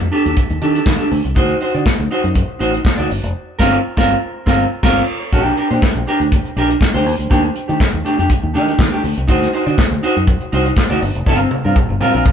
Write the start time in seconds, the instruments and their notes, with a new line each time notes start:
0.00 fingered electric bass F2, muted clean electric guitar stroke
0.12 clean electric guitar D4 G4 A4, closed hi-hat
0.25 fingered electric bass D#2, clean electric guitar D4 G4 A4, closed hi-hat
0.36 muted clean electric guitar stroke, kick, closed hi-hat
0.50 fingered electric bass D#2, muted clean electric guitar stroke, closed hi-hat
0.61 fingered electric bass D#3, clean electric guitar D4 G4 A4, closed hi-hat
0.75 clean electric guitar D4 G4 A4, closed hi-hat
0.86 fingered electric bass D#3, muted clean electric guitar stroke, kick, snare, clap
0.99 clean electric guitar D4 G4 A4
1.11 fingered electric bass D2, muted clean electric guitar stroke, open hi-hat
1.24 fingered electric bass C2, muted clean electric guitar stroke, closed hi-hat
1.35 fingered electric bass D2, clean electric guitar D#4 F#4 C5, kick, closed hi-hat
1.49 closed hi-hat
1.60 clean electric guitar D#4 F#4 C5, closed hi-hat
1.74 fingered electric bass D3, clean electric guitar D#4 F#4 D5, closed hi-hat
1.86 muted clean electric guitar stroke, kick, snare, clap
1.98 fingered electric bass D2, muted clean electric guitar stroke, closed hi-hat
2.11 clean electric guitar D#4 F#4 C5, closed hi-hat
2.23 fingered electric bass F#2, muted clean electric guitar stroke, closed hi-hat
2.35 muted clean electric guitar stroke, kick, closed hi-hat
2.48 muted clean electric guitar stroke
2.59 fingered electric bass A1, clean electric guitar D#4 F#4 C5, closed hi-hat
2.73 muted clean electric guitar stroke, closed hi-hat
2.85 muted clean electric guitar stroke, kick, snare, clap
2.98 fingered electric bass D2, clean electric guitar D#4 F#4 D5, closed hi-hat
3.10 fingered electric bass G1, muted clean electric guitar stroke, open hi-hat
3.23 fingered electric bass F1, muted clean electric guitar stroke, closed hi-hat
3.59 fingered electric bass G1, clean electric guitar C4 F4 A#4, kick, snare, crash
3.97 fingered electric bass G1, clean electric guitar C4 F4 A#4, kick, snare
4.46 fingered electric bass G1, clean electric guitar C4 F4 A#4, kick, snare
4.83 fingered electric bass G1, clean electric guitar C4 F4 A#4, kick, snare, crash
5.32 fingered electric bass A#1, clean electric guitar D4 G4 A#4, kick, closed hi-hat
5.57 clean electric guitar D4 G4 A#4, closed hi-hat
5.70 fingered electric bass A#2, clean electric guitar D4 G4 C5, closed hi-hat
5.82 muted clean electric guitar stroke, kick, snare, clap
5.95 fingered electric bass A#1, muted clean electric guitar stroke, closed hi-hat
6.07 clean electric guitar D4 G4 A#4, closed hi-hat
6.20 fingered electric bass D2, muted clean electric guitar stroke, closed hi-hat
6.32 muted clean electric guitar stroke, kick, closed hi-hat
6.45 muted clean electric guitar stroke, closed hi-hat
6.56 fingered electric bass A#1, clean electric guitar D4 G4 A#4, closed hi-hat
6.70 muted clean electric guitar stroke, closed hi-hat
6.81 muted clean electric guitar stroke, kick, snare, clap
6.94 fingered electric bass D2, clean electric guitar D4 G4 C5
7.05 fingered electric bass D#2, muted clean electric guitar stroke, open hi-hat
7.19 fingered electric bass D2, muted clean electric guitar stroke, closed hi-hat
7.30 fingered electric bass D#2, clean electric guitar A3 D4 G4, kick, closed hi-hat
7.43 muted clean electric guitar stroke, closed hi-hat
7.54 muted clean electric guitar stroke, closed hi-hat
7.68 fingered electric bass D#3, clean electric guitar A3 D4 G4, closed hi-hat
7.80 muted clean electric guitar stroke, kick, snare, clap
7.93 fingered electric bass D#2, muted clean electric guitar stroke, closed hi-hat
8.05 clean electric guitar A3 D4 G4, closed hi-hat
8.18 fingered electric bass F2, clean electric guitar A3 D4 G4, closed hi-hat
8.30 muted clean electric guitar stroke, kick, closed hi-hat
8.43 fingered electric bass D#2, muted clean electric guitar stroke
8.54 fingered electric bass D#3, clean electric guitar A3 D4 G4, closed hi-hat
8.67 clean electric guitar A3 D4 G4, closed hi-hat
8.79 fingered electric bass D#3, muted clean electric guitar stroke, kick, snare, clap
8.92 clean electric guitar A3 D4 G4
9.04 fingered electric bass D2, muted clean electric guitar stroke, open hi-hat
9.17 fingered electric bass C2, muted clean electric guitar stroke, closed hi-hat
9.28 fingered electric bass D2, clean electric guitar D#4 F#4 C5, kick, closed hi-hat
9.41 snare, closed hi-hat
9.53 clean electric guitar D#4 F#4 C5, closed hi-hat
9.66 fingered electric bass D3, clean electric guitar D#4 F#4 D5, closed hi-hat
9.78 muted clean electric guitar stroke, kick, snare, clap
9.91 fingered electric bass D2, muted clean electric guitar stroke, closed hi-hat
10.03 clean electric guitar D#4 F#4 C5, closed hi-hat
10.16 fingered electric bass F#2, muted clean electric guitar stroke, closed hi-hat
10.27 muted clean electric guitar stroke, kick, closed hi-hat
10.40 muted clean electric guitar stroke, closed hi-hat
10.52 fingered electric bass C2, clean electric guitar D#4 F#4 C5, closed hi-hat
10.66 muted clean electric guitar stroke, closed hi-hat
10.77 muted clean electric guitar stroke, kick, snare, clap
10.90 fingered electric bass D2, clean electric guitar D#4 F#4 D5
11.02 fingered electric bass G1, muted clean electric guitar stroke, open hi-hat
11.15 fingered electric bass F1, muted clean electric guitar stroke, closed hi-hat
11.26 fingered electric bass G1, clean electric guitar C4 F4 A#4, kick, high tom
11.40 muted clean electric guitar stroke
11.51 muted clean electric guitar stroke, high tom
11.65 fingered electric bass G2, clean electric guitar C4 F4 A#4
11.76 muted clean electric guitar stroke, kick, mid tom
11.89 fingered electric bass G1, muted clean electric guitar stroke
12.01 clean electric guitar C4 F4 A#4, mid tom
12.14 fingered electric bass A#1, clean electric guitar C4 F4 A#4
12.25 muted clean electric guitar stroke, kick, mid tom